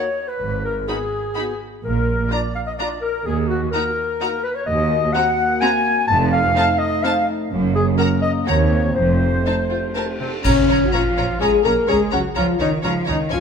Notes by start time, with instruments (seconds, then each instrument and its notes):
Already playing: clarinet C#5, flute section C#5, oboe C#5
0.27 clarinet B4, oboe B4, flute section B4
0.41 double bass section G#1, cello section G#2
0.64 flute section A#4, clarinet A#4, oboe A#4
0.88 french horn section B3 F#4, viola section D#4, violin section F#4 B5, flute section G#4, oboe G#4, clarinet G#4
1.36 french horn section B3 F#4, viola section D#4, violin section F#4 B5
1.83 double bass section A#1, cello section A#2, flute section A#4, clarinet A#4, oboe A#4
2.30 french horn section D4 F4, viola section D4, violin section F4 A#5, flute section D5, oboe D5, clarinet D5
2.54 flute section F5, clarinet F5, oboe F5
2.65 flute section D#5, oboe D#5, clarinet D#5
2.77 viola section D4, french horn section D4 F4, violin section F4 A#5, flute section D5, clarinet D5, oboe D5
3.01 flute section A#4, clarinet A#4, oboe A#4
3.24 cello section D#2, double bass section D#2, flute section G#4, clarinet G#4, oboe G#4
3.48 clarinet F#4, flute section F#4, oboe F#4
3.71 french horn section A#3 F#4, viola section D#4, violin section F#4 A#5, clarinet A#4, flute section A#4, oboe A#4
4.20 french horn section A#3 F#4, viola section D#4, violin section F#4 A#5
4.43 clarinet B4, flute section B4, oboe B4
4.55 flute section C#5, clarinet C#5, oboe C#5
4.66 cello section D#2, double bass section D#2, french horn section A#3 F#4, flute section D#5, clarinet D#5, oboe D#5
5.13 viola section C4, violin section F#4 A#5, clarinet F#5, flute section F#5, oboe F#5
5.60 viola section C4, violin section F#4 A#5, flute section G#5, clarinet G#5, oboe G#5
6.08 double bass section F1, cello section F2, french horn section A3 D#4, clarinet A5, flute section A5, oboe A5
6.32 flute section F5, oboe F5, clarinet F5
6.56 viola section C4, violin section D#4 A5
6.79 clarinet D#5, oboe D#5, flute section D#5
7.03 viola section C4, violin section D#4 A5, clarinet F5, oboe F5, flute section F5
7.50 double bass section F#1, cello section F#2, french horn section A#3 C#4
7.75 oboe G#4, clarinet G#4, flute section G#4
7.98 viola section A#3, violin section F#4 A#5, oboe A#4, clarinet A#4, flute section A#4
8.22 oboe D#5, clarinet D#5, flute section D#5
8.46 double bass section D#2, cello section D#2, french horn section C4, viola section C4, violin section F#4 A#5, oboe C#5, flute section C#5, clarinet C#5
8.95 double bass section F1, cello section F2, french horn section A3, clarinet C5, oboe C5, flute section C5
9.46 viola section C4, violin section D#4 A5
9.70 violin section F4
9.95 viola section C4, violin section A#4 A5
10.19 cello section C3, oboe C4, french horn section C4, violin section A4, flute section C5
10.43 double bass section A#1, cello section C#3, french horn section C#4, oboe C#4, viola section C#4, flute section C#5, violin section C#5 A#5, concert bass drum, crash
10.68 double bass section A#1, viola section C#4, violin section C#5 A#5
10.85 french horn section F#4
10.92 double bass section A#1, cello section F3, viola section C#4, french horn section F4, oboe F4, violin section C#5 A#5, flute section F5
11.17 double bass section A#1, viola section C#4, violin section C#5 A#5
11.39 double bass section A#1, cello section G#3, viola section C#4, french horn section G#4, oboe G#4, violin section C#5 A#5, flute section G#5
11.64 double bass section A#1, cello section A#3, viola section C#4, french horn section A#4, oboe A#4, violin section C#5 A#5, flute section A#5
11.87 double bass section C#2, cello section G#3, viola section C#4, oboe G#4, french horn section G#4, violin section C#5 A#5, flute section G#5
12.11 double bass section C#2, cello section F#3, viola section C#4, french horn section F#4, oboe F#4, violin section C#5 A#5, flute section F#5
12.35 double bass section C#2, cello section F3, viola section C#4, oboe F4, french horn section F4, violin section C#5 A#5, flute section F5
12.60 double bass section C#2, cello section D#3, viola section C#4, oboe D#4, french horn section D#4, violin section C#5 A#5, flute section D#5
12.83 double bass section C#2, cello section F3, viola section C#4, french horn section F4, oboe F4, violin section C#5 A#5, flute section F5
13.06 double bass section C#2, cello section D#3, viola section C#4, oboe D#4, french horn section D#4, violin section C#5 A#5, flute section D#5
13.29 double bass section C#2, cello section F3, viola section C#4, oboe F4, french horn section F4, violin section C#5 G#5, flute section F5